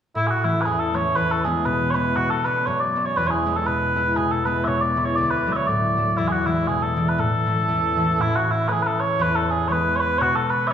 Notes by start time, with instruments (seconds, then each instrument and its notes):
0.15 harp A2, bagpipes E4
0.27 bagpipes F#4 G#4
0.43 harp E3 A3 C#4, bagpipes E4
0.61 bagpipes B4
0.65 harp E2, bagpipes G#4
0.79 bagpipes A4
0.94 harp E3 A3 C#4, bagpipes C#5
1.16 harp E2, bagpipes B4
1.31 bagpipes A4
1.44 harp E3 G#3 B3, bagpipes G#4
1.65 harp B2, bagpipes B4
1.90 harp E3, bagpipes B4 C#5
1.95 harp G#3 B3
2.16 harp B2, bagpipes F#4
2.30 bagpipes A4
2.44 harp B3 C#4 D4, bagpipes B4
2.66 harp F#2, bagpipes C#5
2.80 bagpipes D5
2.96 harp B3 C#4 D4
3.05 bagpipes C#5
3.17 harp E2, bagpipes B4
3.27 bagpipes G#4 C#5
3.46 harp G#3 B3 E4
3.56 bagpipes A4
3.66 harp B2, bagpipes B4
3.96 harp G#3 B3 E4
4.16 harp B2, bagpipes G#4
4.31 bagpipes A4
4.45 harp G#3 B3 E4, bagpipes B4
4.64 harp B2, bagpipes C#5 E5
4.81 bagpipes D5
4.96 harp G#3 B3 E4
5.05 bagpipes C#5
5.16 harp D2, bagpipes D5
5.30 bagpipes B4
5.46 harp F#3 A3 D4
5.52 bagpipes C#5 E5
5.67 harp A2, bagpipes D5
5.97 harp F#3 A3 D4
6.17 harp E2, bagpipes E4
6.28 bagpipes F#4 G#4
6.46 harp E3 G#3 D4, bagpipes E4
6.67 harp B2, bagpipes G#4
6.82 bagpipes A4
6.96 harp E3 G#3 D4
7.09 bagpipes B4
7.18 harp A2, bagpipes A4
7.47 harp E3 A3 C#4
7.68 harp E2
7.97 harp E3 A3 C#4
8.18 harp A2, bagpipes E4
8.36 bagpipes F#4
8.51 bagpipes E4
8.68 harp E3 A3 C#4, bagpipes G#4 B4
8.82 bagpipes B4
8.87 bagpipes A4
9.00 bagpipes C#5
9.19 harp E2, bagpipes B4
9.35 bagpipes A4
9.50 bagpipes G#4
9.68 harp E3 G#3 B3, bagpipes C#5
9.72 bagpipes B4
9.96 bagpipes C#5
10.00 bagpipes B4
10.18 harp B2, bagpipes F#4 C#5
10.35 bagpipes A4
10.50 bagpipes B4
10.67 harp B3, bagpipes E5